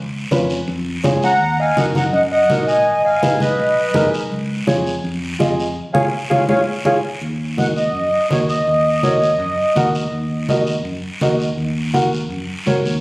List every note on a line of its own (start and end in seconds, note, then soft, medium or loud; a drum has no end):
0.00 0.25 C#2 medium
0.31 0.61 F2 medium
0.31 0.57 C#4 medium
0.31 0.57 F4 medium
0.31 0.57 B4 medium
0.31 high conga medium
0.31 short guiro medium
0.50 short guiro medium
0.68 0.97 F2 loud
0.68 long guiro medium
1.04 1.41 C#2 medium
1.04 1.30 C#4 medium
1.04 1.30 F4 medium
1.04 1.30 G#4 medium
1.04 high conga medium
1.04 low conga medium
1.04 short guiro medium
1.22 1.57 F#5 medium
1.22 1.61 A#5 loud
1.22 short guiro medium
1.41 1.70 D#2 medium
1.41 long guiro medium
1.60 1.76 D#5 medium
1.60 1.76 F5 medium
1.60 1.77 G#5 medium
1.76 2.06 F#2 medium
1.76 2.02 D#4 medium
1.76 2.02 F#4 medium
1.76 2.03 A#4 medium
1.76 1.85 D#5 medium
1.76 1.86 D#5 medium
1.76 1.86 F#5 medium
1.76 high conga medium
1.76 short guiro medium
1.95 2.04 F#5 medium
1.95 2.05 F#5 medium
1.95 2.04 A#5 medium
1.95 high conga medium
1.95 short guiro medium
2.13 2.42 F#2 loud
2.13 2.22 D#5 medium
2.13 2.22 F#5 medium
2.13 long guiro medium
2.32 2.66 D#5 medium
2.32 2.66 F#5 loud
2.49 2.86 A#1 medium
2.49 2.75 D#4 medium
2.49 2.75 F#4 medium
2.49 2.75 A#4 medium
2.49 high conga medium
2.49 short guiro medium
2.67 3.01 D#5 medium
2.67 3.02 D#5 medium
2.67 3.03 G#5 medium
2.67 short guiro medium
2.86 3.15 G#1 medium
2.86 long guiro medium
3.05 3.38 D#5 medium
3.05 3.38 F5 medium
3.05 3.42 G#5 loud
3.22 3.51 B1 medium
3.22 3.48 D#4 medium
3.22 3.48 G#4 medium
3.22 3.48 B4 medium
3.22 high conga medium
3.22 short guiro medium
3.40 4.09 B4 medium
3.40 4.09 D#5 medium
3.40 high conga medium
3.40 short guiro medium
3.58 3.88 B1 loud
3.58 long guiro medium
3.94 4.32 B1 medium
3.94 4.20 D#4 medium
3.94 4.20 G#4 medium
3.94 4.20 A#4 loud
3.94 high conga medium
3.94 low conga medium
3.94 short guiro medium
4.14 short guiro medium
4.32 4.61 C#2 medium
4.32 long guiro medium
4.67 4.97 F2 loud
4.67 4.93 F4 medium
4.67 4.93 G#4 medium
4.67 4.93 C#5 medium
4.67 high conga medium
4.67 short guiro medium
4.87 short guiro medium
5.04 5.33 F2 loud
5.04 long guiro medium
5.39 5.77 F2 medium
5.39 5.65 F4 medium
5.39 5.65 G#4 medium
5.39 5.66 D#5 medium
5.39 high conga medium
5.39 short guiro medium
5.60 short guiro medium
5.93 6.08 C#2 medium
5.93 6.06 F4 medium
5.93 6.06 G#4 medium
5.93 6.06 G#4 loud
5.93 6.06 C#5 medium
5.93 6.06 C#5 loud
5.93 6.06 F5 medium
5.93 6.06 G#5 medium
5.93 high conga medium
5.93 long guiro loud
6.30 6.45 C#2 medium
6.30 6.42 F4 medium
6.30 6.42 G#4 medium
6.30 6.42 C#5 medium
6.30 6.42 C#5 loud
6.30 6.42 F5 medium
6.30 6.42 G#5 medium
6.30 high conga loud
6.30 long guiro loud
6.49 6.63 C#2 medium
6.49 6.61 F4 medium
6.49 6.61 G#4 medium
6.49 6.60 C#5 medium
6.49 6.61 C#5 medium
6.49 6.61 C#5 loud
6.49 6.61 F5 loud
6.49 6.61 F5 medium
6.49 6.60 G#5 medium
6.49 high conga medium
6.49 long guiro medium
6.85 6.99 C#2 medium
6.85 6.97 F4 loud
6.85 6.97 G#4 medium
6.85 6.97 G#4 loud
6.85 6.97 C#5 medium
6.85 6.97 C#5 loud
6.85 6.97 F5 medium
6.85 6.98 F5 medium
6.85 6.97 G#5 medium
6.85 high conga medium
6.85 long guiro medium
7.21 7.94 D#2 medium
7.21 long guiro medium
7.57 7.83 F#4 medium
7.57 7.83 A#4 medium
7.57 7.84 D#5 medium
7.57 7.66 F#5 medium
7.57 high conga medium
7.57 short guiro medium
7.76 8.27 D#5 medium
7.76 short guiro medium
7.94 8.09 F#2 medium
7.94 long guiro medium
8.30 8.60 D#2 medium
8.30 8.56 F#4 medium
8.30 8.56 A#4 medium
8.30 8.39 C#5 medium
8.30 8.56 D#5 medium
8.30 high conga medium
8.30 short guiro medium
8.49 9.90 D#5 medium
8.49 short guiro medium
8.67 9.39 D#2 medium
8.67 long guiro medium
9.03 9.29 F#4 medium
9.03 9.29 A#4 medium
9.03 9.29 C#5 medium
9.03 high conga medium
9.03 short guiro medium
9.22 short guiro medium
9.39 9.54 F#2 medium
9.39 long guiro medium
9.76 10.05 D#2 medium
9.76 10.01 F#4 medium
9.76 10.02 A#4 medium
9.76 10.02 F#5 medium
9.76 high conga medium
9.76 short guiro medium
9.95 short guiro medium
10.12 10.85 D#2 medium
10.12 long guiro medium
10.49 10.74 F#4 medium
10.49 10.74 A#4 medium
10.49 10.75 D#5 medium
10.49 high conga medium
10.49 short guiro medium
10.67 short guiro medium
10.85 10.99 F#2 medium
10.85 long guiro medium
11.21 11.51 D#2 medium
11.21 11.47 F#4 medium
11.21 11.47 A#4 medium
11.21 11.47 D#5 medium
11.21 high conga medium
11.21 short guiro medium
11.40 short guiro medium
11.57 12.30 D#2 medium
11.57 long guiro medium
11.93 12.19 F#4 medium
11.93 12.19 A#4 medium
11.93 12.19 F#5 medium
11.93 high conga medium
11.93 short guiro medium
12.13 short guiro medium
12.30 12.45 F#2 medium
12.30 long guiro medium
12.66 12.83 C#2 medium
12.66 12.92 F#4 medium
12.66 12.92 A#4 medium
12.66 12.92 C#5 medium
12.66 high conga medium
12.66 short guiro medium
12.84 13.01 D#2 medium
12.84 short guiro medium